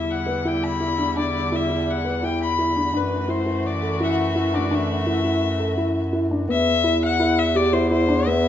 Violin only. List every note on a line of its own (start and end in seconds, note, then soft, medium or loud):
0.00 0.12 E5 medium
0.11 0.49 F#5 medium
0.47 0.65 G5 medium
0.64 1.17 B5 medium
1.18 1.58 D5 medium
1.56 1.92 E5 medium
1.90 2.26 F#5 medium
2.24 2.41 G5 medium
2.42 2.98 B5 medium
2.97 3.32 B4 medium
3.30 3.68 C5 medium
3.66 4.01 D5 medium
4.03 4.06 E5 medium
4.03 4.13 F#5 medium
4.11 4.19 E5 medium
4.20 4.57 E5 medium
4.55 4.76 D5 medium
4.75 6.15 E5 medium
6.52 7.00 E5 loud
7.05 7.40 F#5 medium
7.39 7.58 E5 medium
7.56 7.74 D5 medium
7.73 7.91 C5 medium
7.91 8.28 C5 medium
8.27 8.48 E5 medium